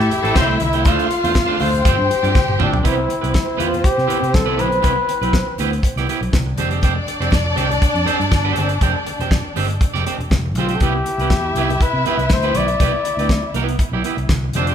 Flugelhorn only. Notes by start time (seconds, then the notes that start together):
Already playing: G4
0.39 E4
0.64 E4
0.89 F4
1.62 C5
2.62 D4
2.85 E4
3.60 F4
3.85 G4
4.35 A4
4.60 B4
10.58 F4
10.76 A4
10.82 G4
11.82 B4
12.07 B4
12.33 C5
12.57 D5
14.56 D4